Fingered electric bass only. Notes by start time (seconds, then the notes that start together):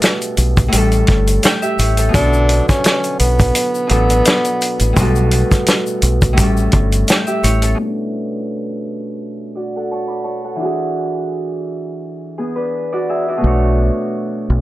0.38 B1
0.73 A1
1.09 G1
1.79 A1
2.14 B1
3.20 B1
3.91 A1
4.81 A1
4.97 B1
6.03 B1
6.38 A1
6.73 G1
7.44 A1
13.44 B1
14.50 B1